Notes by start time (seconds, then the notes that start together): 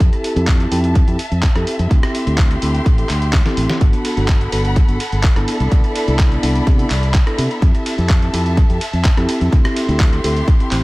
0.00 F2 C4 E4 G4 A4 E5 A5, kick, closed hi-hat
0.13 closed hi-hat
0.24 open hi-hat
0.36 F2 C4 E4 G4 A4, closed hi-hat
0.47 kick, clap, closed hi-hat
0.60 closed hi-hat
0.71 F2 C4 E4 G4 A4, open hi-hat
0.84 closed hi-hat
0.95 kick, closed hi-hat
1.07 F2 C4 E4 G4 A4, closed hi-hat
1.19 open hi-hat
1.31 F2, closed hi-hat
1.43 kick, clap, closed hi-hat
1.55 F2 C4 E4 G4 A4, cross-stick, closed hi-hat
1.67 open hi-hat
1.79 F2, closed hi-hat
1.90 D2 C4 E4 G4 A4 C6, kick, closed hi-hat
2.03 cross-stick, closed hi-hat
2.15 open hi-hat
2.26 D2 C4 E4 G4 A4, closed hi-hat
2.38 kick, clap, closed hi-hat
2.51 closed hi-hat
2.61 D2 C4 E4 G4 A4, open hi-hat
2.75 closed hi-hat
2.86 A1, kick, closed hi-hat
2.98 C4 E4 G4 A4, closed hi-hat
3.09 D2, clap, open hi-hat
3.22 closed hi-hat
3.33 kick, snare, clap, closed hi-hat
3.45 C4 E4 G4 A4, snare, closed hi-hat
3.57 A1, open hi-hat
3.70 snare, closed hi-hat
3.80 G1 B3 F#4 A4 F#5 B5, kick, closed hi-hat
3.93 closed hi-hat
4.05 open hi-hat, ride
4.17 G1 B3 D4 F#4 A4, closed hi-hat
4.28 kick, clap, closed hi-hat
4.41 closed hi-hat
4.52 G1 B3 D4 F#4 A4, open hi-hat, ride
4.65 closed hi-hat
4.76 kick, closed hi-hat
4.88 G1 B3 D4 F#4 A4, closed hi-hat
5.00 open hi-hat, ride
5.12 G1, closed hi-hat
5.23 kick, clap, closed hi-hat
5.36 G1 B3 D4 E4 A4, cross-stick, closed hi-hat
5.48 D5 E5 B5, open hi-hat, ride
5.60 C2, closed hi-hat
5.71 C2 B3 D4 A4, kick, closed hi-hat
5.84 closed hi-hat
5.96 open hi-hat, ride
6.07 C2 B3 D4 E4 A4, closed hi-hat
6.19 kick, clap, closed hi-hat
6.32 closed hi-hat
6.42 C2 B3 D4 E4 A4, open hi-hat, ride
6.56 closed hi-hat
6.67 C3, kick, closed hi-hat
6.78 B3 D4 E4 A4, closed hi-hat
6.90 C2, clap, open hi-hat, ride
7.03 closed hi-hat
7.14 kick, clap, closed hi-hat
7.26 B3 D4 E4 A4, cross-stick, closed hi-hat
7.38 C3, open hi-hat, ride
7.51 closed hi-hat
7.62 F2 C4 E4 G4 A4 A5, kick, closed hi-hat
7.75 closed hi-hat
7.86 open hi-hat, ride
7.98 F2 C4 E4 G4 A4, closed hi-hat
8.09 kick, clap, closed hi-hat
8.22 closed hi-hat
8.33 F2 C4 E4 G4 A4, open hi-hat, ride
8.46 closed hi-hat
8.57 kick, closed hi-hat
8.69 F2 C4 E4 G4 A4, closed hi-hat
8.81 open hi-hat, ride
8.93 F2, closed hi-hat
9.04 kick, clap, closed hi-hat
9.17 F2 C4 E4 G4 A4, cross-stick, closed hi-hat
9.29 open hi-hat, ride
9.41 F2, closed hi-hat
9.52 D2 C4 E4 G4 C6, kick, closed hi-hat
9.65 cross-stick, closed hi-hat
9.76 open hi-hat, ride
9.88 D2 C4 E4 G4 A4, closed hi-hat
10.00 kick, clap, closed hi-hat
10.13 closed hi-hat
10.24 D2 C4 E4 G4 A4, open hi-hat, ride
10.37 closed hi-hat
10.48 kick, closed hi-hat
10.60 C4 E4 G4 A4, closed hi-hat
10.71 A1 C4 E4 G4 C5, clap, open hi-hat, ride